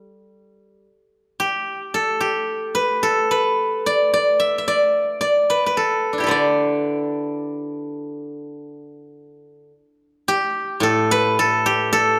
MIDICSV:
0, 0, Header, 1, 2, 480
1, 0, Start_track
1, 0, Tempo, 1063830
1, 865, Tempo, 1086957
1, 1828, Time_signature, 4, 2, 24, 8
1, 2305, Tempo, 1109057
1, 2785, Tempo, 1153846
1, 3745, Tempo, 1102941
1, 5311, End_track
2, 0, Start_track
2, 0, Title_t, "Guzheng"
2, 0, Program_c, 0, 107
2, 0, Note_on_c, 0, 55, 46
2, 380, Note_off_c, 0, 55, 0
2, 630, Note_on_c, 0, 67, 64
2, 876, Note_on_c, 0, 69, 64
2, 990, Note_off_c, 0, 67, 0
2, 992, Note_on_c, 0, 67, 53
2, 1232, Note_on_c, 0, 71, 63
2, 1354, Note_off_c, 0, 69, 0
2, 1356, Note_on_c, 0, 69, 67
2, 1478, Note_off_c, 0, 71, 0
2, 1480, Note_on_c, 0, 71, 63
2, 1725, Note_on_c, 0, 74, 72
2, 1843, Note_off_c, 0, 74, 0
2, 1845, Note_on_c, 0, 74, 69
2, 1960, Note_on_c, 0, 76, 60
2, 2032, Note_off_c, 0, 67, 0
2, 2040, Note_off_c, 0, 76, 0
2, 2042, Note_on_c, 0, 76, 42
2, 2082, Note_off_c, 0, 74, 0
2, 2084, Note_on_c, 0, 74, 67
2, 2316, Note_off_c, 0, 74, 0
2, 2318, Note_on_c, 0, 74, 63
2, 2324, Note_off_c, 0, 69, 0
2, 2381, Note_off_c, 0, 71, 0
2, 2443, Note_on_c, 0, 71, 62
2, 2513, Note_off_c, 0, 71, 0
2, 2515, Note_on_c, 0, 71, 47
2, 2561, Note_on_c, 0, 69, 59
2, 2717, Note_on_c, 0, 62, 26
2, 2739, Note_on_c, 0, 64, 28
2, 2747, Note_on_c, 0, 67, 32
2, 2761, Note_off_c, 0, 69, 0
2, 2763, Note_on_c, 0, 69, 36
2, 2774, Note_off_c, 0, 71, 0
2, 2775, Note_on_c, 0, 71, 38
2, 2783, Note_on_c, 0, 50, 43
2, 2792, Note_off_c, 0, 76, 0
2, 2793, Note_off_c, 0, 74, 0
2, 2795, Note_on_c, 0, 74, 60
2, 3563, Note_off_c, 0, 74, 0
2, 3626, Note_off_c, 0, 71, 0
2, 3676, Note_off_c, 0, 69, 0
2, 3729, Note_off_c, 0, 67, 0
2, 3829, Note_off_c, 0, 64, 0
2, 3890, Note_off_c, 0, 62, 0
2, 4230, Note_off_c, 0, 50, 0
2, 4479, Note_on_c, 0, 67, 80
2, 4706, Note_on_c, 0, 45, 54
2, 4718, Note_on_c, 0, 69, 77
2, 4841, Note_on_c, 0, 71, 87
2, 4960, Note_off_c, 0, 69, 0
2, 4961, Note_on_c, 0, 69, 88
2, 5076, Note_off_c, 0, 67, 0
2, 5078, Note_on_c, 0, 67, 73
2, 5193, Note_off_c, 0, 69, 0
2, 5195, Note_on_c, 0, 69, 92
2, 5311, Note_off_c, 0, 45, 0
2, 5311, Note_off_c, 0, 67, 0
2, 5311, Note_off_c, 0, 69, 0
2, 5311, Note_off_c, 0, 71, 0
2, 5311, End_track
0, 0, End_of_file